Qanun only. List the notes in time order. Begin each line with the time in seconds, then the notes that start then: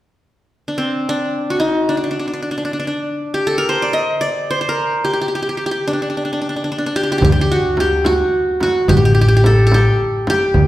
0.68 D4
0.78 C4
1.09 D4
1.50 F#4
1.60 D#4
1.89 D4
1.97 D4
2.04 D4
2.11 D4
2.19 D4
2.28 D4
2.34 D4
2.43 D4
2.51 D4
2.58 D4
2.65 D4
2.73 D4
2.80 D4
2.87 D4
3.34 G4
3.47 A4
3.58 A#4
3.69 C5
3.82 D5
3.93 D#5
4.21 D5
4.51 C5
4.61 C5
4.69 A#4
5.05 G4
5.13 G4
5.21 G4
5.28 G4
5.35 G4
5.42 G4
5.49 G4
5.57 G4
5.66 G4
5.71 G4
5.88 D4
5.93 D4
6.02 D4
6.10 D4
6.17 D4
6.25 D4
6.33 D4
6.42 D4
6.49 D4
6.56 D4
6.64 D4
6.72 D4
6.78 D4
6.86 D4
6.96 G4
7.03 G4
7.12 G4
7.18 G4
7.24 G4
7.32 G4
7.41 G4
7.52 F#4
7.80 G4
8.06 F#4
8.63 F#4
8.89 G4
8.97 G4
9.05 G4
9.15 G4
9.21 G4
9.28 G4
9.37 G4
9.46 A4
9.67 A4
9.74 G4
10.30 G4